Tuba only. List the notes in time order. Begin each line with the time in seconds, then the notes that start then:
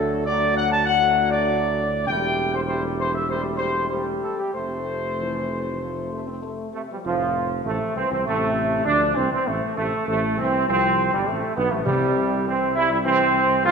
Already playing: D2
2.07 E1
4.54 F1
7.05 F1
7.65 A1
7.96 C2
8.11 C2
8.26 A1
8.86 D2
9.17 C2
9.32 C2
9.47 A1
9.77 A1
10.07 A1
10.39 C2
10.68 C2
11.13 G1
11.27 A1
11.57 B1
11.72 A1
11.87 C2